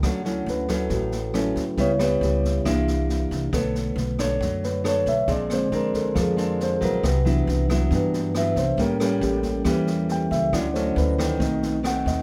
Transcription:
<<
  \new Staff \with { instrumentName = "Tine electric piano" } { \time 4/4 \key d \major \tempo 4 = 137 r4 b'8 a'8 fis'4. r8 | cis''8 b'8 g'4. r4. | r2 r8 b'8 cis''8 e''8 | d''8 c''8 bes'8 a'8 aes'4 c''8 bes'8 |
b'2 r4 e''8 c''8 | bes'8 a'8 g'4 r4 g''8 e''8 | d''8 c''8 b'4 r4 fis''8 dis''8 | }
  \new Staff \with { instrumentName = "Tine electric piano" } { \time 4/4 \key d \major r8 <fis cis' e'>2~ <fis cis' e'>8 <fis cis' e'>8 r8 | <g b e'>8 r4. <e bes d'>2 | <d a>1 | r8 <d aes c'>2.~ <d aes c'>8 |
r8 <e fis b d'>8 r4 <e fis b d'>8 r4. | <g bes cis'>4. r8 <g bes cis'>8 r4. | <fis cis' e'>4. r8 <a c' dis'>2 | }
  \new Staff \with { instrumentName = "Nylon-string guitar" } { \time 4/4 \key d \major << { <fis a cis'>8 <fis a cis'>4 <fis a cis'>4. <fis a cis'>8 r8 | <g b e'>8 <g b e'>4. <bes d' e'>2 | <d' a' cis''>4 r8 <d' a' cis''>4. <d' a' cis''>8 r8 | <aes c' d'>4 <aes c' d'>4. <aes c' d'>4 <fis b e'>8~ |
<fis b e'>8 <fis b e'>4 <fis b e'>4. <fis b e'>8 r8 | <g bes cis'>8 <g bes cis'>4. <g bes cis'>4. r8 | <fis a cis'>8 <fis a cis'>4 <ees a>4. <dis a c'>4 | } \\ { d2 a,2 | cis2 c2 | b2 fis2 | bes,2 f2 |
c2 g,2 | a,2 e2 | d2 b,2 | } >> }
  \new Staff \with { instrumentName = "Upright bass" } { \clef bass \time 4/4 \key d \major d,4 d,4 a,,4. d,8 | cis,4 cis,4 c,4. c,8 | b,,4 b,,4 fis,4. b,,8 | bes,,4 bes,,4 f,4. bes,,8 |
c,4 c,4 g,4. c,8 | a,,4 a,,4 e,4. cis,8 | d,4 d,4 b,,4. dis,8 | }
  \new DrumStaff \with { instrumentName = "Drums" } \drummode { \time 4/4 <bd ss sn>8 sn8 sn8 <bd ss sn>8 <bd sn>8 sn8 <ss sn>8 <bd sn>8 | <bd sn>8 <ss sn>8 sn8 <bd sn>8 <bd ss sn>8 sn8 sn8 <bd sn>8 | <bd ss sn>8 sn8 sn8 <bd ss sn>8 <bd sn>8 sn8 <ss sn>8 <bd sn>8 | <bd sn>8 <ss sn>8 sn8 <bd sn>8 <bd ss sn>8 sn8 sn8 <bd sn>8 |
<bd ss sn>8 sn8 sn8 <bd ss sn>8 <bd sn>8 sn8 <ss sn>8 <bd sn>8 | <bd sn>8 <ss sn>8 sn8 <bd sn>8 <bd ss sn>8 sn8 sn8 <bd sn>8 | <bd ss sn>8 sn8 sn8 <bd ss sn>8 <bd sn>8 sn8 <ss sn>8 <bd sn>8 | }
>>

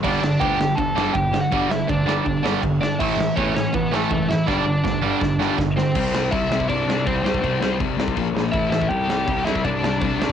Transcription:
<<
  \new Staff \with { instrumentName = "Lead electric guitar" } { \time 4/4 \key g \lydian \tempo 4 = 162 <d' d''>4 <g' g''>4 <a' a''>4 <g' g''>8. <fis' fis''>16~ | <fis' fis''>8 <e' e''>8 <d' d''>4. r4 <d' d''>8 | <e' e''>4 <cis' cis''>8 <cis' cis''>8 <b b'>8 <a a'>4 <e' e''>8 | <d' d''>2. r8 <c' c''>8~ |
\key c \lydian <c' c''>4 <e' e''>4 <d' d''>4 <c' c''>8 <c' c''>8~ | <c' c''>4 r2 <e' e''>8 <e' e''>8 | <g' g''>4. <e' e''>8 <d' d''>2 | }
  \new Staff \with { instrumentName = "Distorted electric guitar" } { \clef bass \time 4/4 \key g \lydian <g, d g>8 <g, d>8 <g, d g>8 <g, d>8 <g, d>8 <g, d g>8 <g, d>8 <g, d>8 | <g, d g>8 <g, d>8 <g, d>8 <g, d g>8 <g, d>8 <g, d g>8 <g, d>8 <g, d>8 | <a, e a>8 <a, e>8 <a, e a>8 <a, e>8 <a, e>8 <a, e a>8 <a, e>8 <a, e>8 | <g, d g>8 <g, d>8 <g, d>8 <g, d g>8 <g, d>8 <g, d g>8 <g, d>8 <g, d>8 |
\key c \lydian r1 | r1 | r1 | }
  \new Staff \with { instrumentName = "Overdriven electric guitar" } { \clef bass \time 4/4 \key g \lydian <g, d g>8 <g, d>8 <g, d g>8 <g, d>8 <g, d>8 <g, d g>8 <g, d>8 <g, d>8 | <g, d g>8 <g, d>8 <g, d>8 <g, d g>8 <g, d>8 <g, d g>8 <g, d>8 <g, d>8 | <a, e a>8 <a, e>8 <a, e a>8 <a, e>8 <a, e>8 <a, e a>8 <a, e>8 <a, e>8 | <g, d g>8 <g, d>8 <g, d>8 <g, d g>8 <g, d>8 <g, d g>8 <g, d>8 <g, d>8 |
\key c \lydian <c g c'>8 <c g c'>8 <c g c'>8 <c g c'>8 <c g c'>8 <c g c'>8 <c g c'>8 <c g c'>8 | <c g c'>8 <c g c'>8 <c g c'>8 <c g c'>8 <bes, f bes>8 <bes, f bes>8 <a, e a>8 <a, e a>8 | <c g c'>8 <c g c'>8 <c g c'>8 <c g c'>8 <c g c'>8 <c g c'>8 <c g c'>8 <c g c'>8 | }
  \new Staff \with { instrumentName = "Picked electric bass" } { \clef bass \time 4/4 \key g \lydian g,,8 g,,8 d,8 g,,8 g,,8 g,,8 g,,4 | g,,8 g,,8 d,8 g,,8 g,,8 g,,8 g,,4 | a,,8 a,,8 e,8 a,,8 a,,8 a,,8 fis,,4 | g,,8 g,,8 d,8 g,,8 g,,8 g,,8 g,,4 |
\key c \lydian c,4 c,8 c,8 c,8 c,8 c,8 c,8 | c,4 c,8 c,8 bes,,8 bes,,8 a,,8 a,,8 | c,4 c,8 c,8 c,8 c,8 c,8 c,8 | }
  \new DrumStaff \with { instrumentName = "Drums" } \drummode { \time 4/4 <cymc bd>8 sn8 <bd cymr>8 sn8 <bd cymr>8 sn8 <bd cymr>8 sn8 | <bd cymr>8 sn8 <bd cymr>8 sn8 <bd cymr>8 sn8 <bd cymr>8 sn8 | <cymc bd>8 sn8 <bd cymr>8 sn8 <bd cymr>8 sn8 <bd cymr>8 sn8 | <bd sn>4 <bd sn>4 <bd sn>8 sn8 <bd sn>8 sn8 |
<cymc bd>8 sn8 <cymc bd>8 sn16 bd16 <cymc bd>8 sn8 <cymc bd>8 sn16 bd16 | <cymc bd>8 sn8 <cymc bd>8 sn16 bd16 <cymc bd>8 sn8 <cymc bd>8 sn16 bd16 | <cymc bd>8 sn8 <cymc bd>8 sn16 bd16 <cymc bd>8 sn8 <cymc bd>8 sn8 | }
>>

